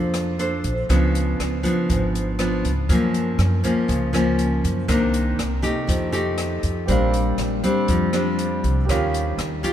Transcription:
0.00 0.60 F2 medium
0.00 0.87 F3 soft
0.00 0.36 D4 medium
0.00 0.36 A4 medium
0.00 0.36 C5 medium
0.14 cross-stick medium
0.14 closed hi-hat soft
0.39 0.72 D4 soft
0.39 0.72 A4 medium
0.39 0.72 C5 medium
0.39 closed hi-hat soft
0.64 0.88 A#1 medium
0.64 kick soft
0.64 closed hi-hat soft
0.89 1.36 C#2 medium
0.89 1.87 C#3 medium
0.89 1.60 F3 soft
0.89 1.61 B3 medium
0.89 1.61 D4 medium
0.89 kick soft
0.89 cross-stick medium
0.89 closed hi-hat medium
1.15 closed hi-hat soft
1.40 1.63 C#2 medium
1.40 cross-stick medium
1.40 closed hi-hat soft
1.63 2.35 F3 medium
1.63 2.35 B3 medium
1.63 2.35 D4 medium
1.63 kick soft
1.63 closed hi-hat soft
1.89 2.61 G#1 medium
1.89 2.87 G#2 soft
1.89 kick medium
1.89 closed hi-hat soft
2.15 closed hi-hat soft
2.39 2.71 F3 soft
2.39 2.72 B3 medium
2.39 2.72 D4 medium
2.39 cross-stick medium
2.39 closed hi-hat soft
2.64 2.88 C#2 medium
2.64 kick soft
2.64 closed hi-hat soft
2.89 3.87 F#2 medium
2.89 3.36 F#2 medium
2.89 3.60 F3 medium
2.89 3.60 A#3 soft
2.89 3.61 C#4 medium
2.89 kick medium
2.89 closed hi-hat soft
3.14 closed hi-hat soft
3.38 3.62 F#2 medium
3.38 cross-stick medium
3.38 closed hi-hat soft
3.64 4.10 F3 medium
3.64 4.10 A#3 medium
3.64 4.10 C#4 medium
3.64 kick soft
3.64 closed hi-hat soft
3.88 4.60 C#2 medium
3.88 4.86 C#3 soft
3.88 kick soft
3.88 closed hi-hat soft
4.13 4.84 F3 soft
4.13 4.85 A#3 medium
4.13 4.85 C#4 medium
4.13 cross-stick medium
4.13 closed hi-hat soft
4.39 closed hi-hat soft
4.64 4.87 F#2 medium
4.64 kick soft
4.64 closed hi-hat soft
4.88 5.35 C2 medium
4.88 5.86 C3 medium
4.88 5.38 D#3 medium
4.88 5.38 A#3 medium
4.88 5.39 D4 medium
4.88 kick medium
4.88 cross-stick medium
4.88 closed hi-hat medium
5.14 closed hi-hat soft
5.39 5.62 C2 medium
5.39 cross-stick medium
5.39 closed hi-hat soft
5.62 6.09 A3 medium
5.62 6.09 D#4 medium
5.62 6.09 G4 medium
5.62 kick soft
5.62 closed hi-hat soft
5.87 6.60 F2 medium
5.87 6.86 F3 soft
5.87 kick medium
5.87 closed hi-hat medium
6.12 6.84 A3 medium
6.12 6.84 D#4 medium
6.12 6.84 G4 medium
6.12 closed hi-hat soft
6.38 cross-stick medium
6.38 closed hi-hat soft
6.63 6.87 F2 medium
6.63 kick soft
6.63 closed hi-hat soft
6.86 7.35 A#1 medium
6.86 7.86 A#2 soft
6.86 7.59 G3 medium
6.86 7.59 C4 medium
6.86 7.60 D4 medium
6.86 8.83 G4 medium
6.86 8.84 C5 soft
6.86 8.85 D5 soft
6.86 kick soft
6.86 closed hi-hat soft
6.91 8.86 F5 medium
7.14 closed hi-hat soft
7.38 7.62 A#1 medium
7.38 cross-stick soft
7.38 closed hi-hat soft
7.64 8.10 G3 medium
7.64 8.10 C4 medium
7.64 8.10 D4 medium
7.64 kick soft
7.64 closed hi-hat soft
7.88 8.60 F2 medium
7.88 8.86 F3 soft
7.88 kick medium
7.88 closed hi-hat soft
8.13 8.84 G3 medium
8.13 8.85 C4 medium
8.13 8.85 D4 medium
8.13 cross-stick medium
8.13 closed hi-hat soft
8.39 closed hi-hat soft
8.64 8.87 C2 medium
8.64 kick soft
8.64 closed hi-hat soft
8.85 9.35 D#2 medium
8.85 9.73 G4 medium
8.85 9.73 A#4 soft
8.85 9.73 C#5 soft
8.85 kick soft
8.89 9.73 D#3 soft
8.89 9.39 C#4 soft
8.89 9.39 F4 medium
8.89 9.39 G4 medium
8.89 9.73 F5 medium
8.89 cross-stick medium
8.89 closed hi-hat soft
9.14 closed hi-hat soft
9.38 9.61 D#2 medium
9.38 cross-stick medium
9.38 closed hi-hat soft
9.63 9.73 C#4 medium
9.63 9.73 F4 medium
9.63 9.73 G4 medium
9.63 kick soft
9.63 closed hi-hat soft

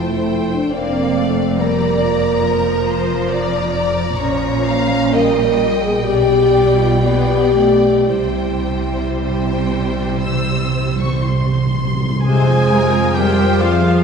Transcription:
0.00 0.71 F1 soft
0.00 0.71 F2 soft
0.00 0.75 A3 soft
0.00 0.53 E4 medium
0.00 0.70 C5 soft
0.00 0.76 G5 soft
0.53 0.74 D4 medium
0.74 4.13 F1 medium
0.74 4.13 F2 medium
0.74 1.16 A#3 medium
0.74 1.59 C4 medium
0.74 1.59 D5 soft
0.74 1.60 F5 soft
1.17 1.59 A3 medium
1.58 2.01 G3 medium
1.58 3.74 A#3 medium
1.58 2.43 D5 medium
1.58 3.30 A#5 medium
2.01 4.14 F3 medium
2.44 2.87 A#4 medium
2.88 3.31 C5 medium
3.30 3.70 D5 medium
3.30 5.11 A#5 medium
3.71 4.15 D5 medium
4.15 6.02 A#1 medium
4.15 6.01 A#2 medium
4.15 5.11 F3 medium
4.15 5.11 C#4 medium
4.15 4.65 C#5 medium
4.66 5.14 F5 medium
5.14 6.05 G3 medium
5.14 5.82 A#4 medium
5.14 6.05 D#5 soft
5.14 8.06 G5 medium
5.82 6.05 G#4 medium
6.03 8.08 B1 medium
6.03 8.08 B2 medium
6.03 7.01 G3 medium
6.03 6.75 G4 medium
6.03 7.02 D5 medium
6.79 7.03 F4 medium
7.01 7.55 B3 soft
7.01 8.07 G4 medium
7.01 8.06 D5 soft
7.55 8.07 A3 soft
8.07 12.04 C2 soft
8.07 12.03 C3 soft
8.07 8.17 C3 soft
8.07 12.04 G3 soft
8.07 11.20 E4 medium
8.07 12.04 C5 soft
8.07 9.03 G5 soft
8.18 8.26 C3 soft
8.28 8.36 C3 soft
8.38 8.45 C3 soft
8.47 8.54 C3 soft
8.56 8.63 C3 soft
8.64 8.72 C3 soft
8.92 8.99 C3 soft
9.00 9.08 C3 soft
9.10 9.18 C3 soft
9.15 10.17 G5 soft
9.19 9.27 C3 soft
9.28 9.35 C3 soft
9.36 9.43 C3 soft
9.44 9.53 C3 soft
9.54 9.62 C3 soft
9.63 9.71 C3 soft
9.72 9.81 C3 soft
9.82 9.89 C3 soft
10.00 10.07 C3 soft
10.08 10.16 C3 soft
10.18 10.24 C3 soft
10.22 10.34 C3 soft
10.22 10.99 E6 medium
10.35 10.42 C3 soft
10.43 10.50 C3 soft
10.51 10.60 C3 soft
10.61 10.69 C3 soft
10.70 10.77 C3 soft
10.78 10.86 C3 soft
10.87 10.95 C3 soft
10.96 11.02 C3 medium
10.96 11.24 C#6 soft
11.04 11.10 C3 medium
11.12 11.19 C3 medium
11.20 11.28 C3 medium
11.20 12.25 C6 soft
11.30 11.38 C3 medium
11.39 11.47 C3 medium
11.49 11.56 C3 medium
11.57 11.65 C3 medium
11.67 11.73 C3 medium
11.74 11.82 C3 medium
11.83 11.91 C3 medium
11.93 12.00 C3 medium
12.01 12.07 C3 medium
12.08 12.16 C3 medium
12.18 12.25 C3 medium
12.24 14.04 F2 medium
12.24 12.47 C3 medium
12.24 13.13 G#3 medium
12.24 14.04 F4 soft
12.24 13.19 G#4 medium
12.24 13.17 G#4 medium
12.24 12.69 C5 medium
12.24 13.14 C5 medium
12.24 13.12 G#5 medium
12.48 12.71 F3 soft
12.71 12.94 C3 soft
12.71 13.17 A#4 medium
12.94 13.17 F3 soft
13.15 13.40 C3 medium
13.15 13.61 G3 medium
13.15 13.63 G3 medium
13.15 13.62 G4 medium
13.15 13.63 G4 medium
13.15 13.63 A#4 medium
13.15 14.04 C5 medium
13.15 13.62 G5 medium
13.41 13.63 F3 soft
13.61 13.86 C3 medium
13.61 14.04 F3 medium
13.61 14.04 F4 medium
13.61 14.04 G#4 medium
13.61 14.04 F5 medium
13.85 14.04 F3 soft

